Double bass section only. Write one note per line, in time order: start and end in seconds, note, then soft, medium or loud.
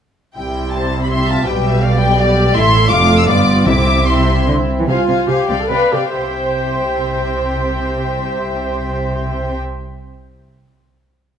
0.37 1.44 C2 soft
1.48 2.56 B1 medium
2.56 2.91 A1 medium
2.92 3.29 F1 medium
3.28 3.67 G1 medium
3.67 4.68 C2 medium
4.88 5.07 C2 soft
5.49 5.69 C2 soft
6.16 9.56 C2 soft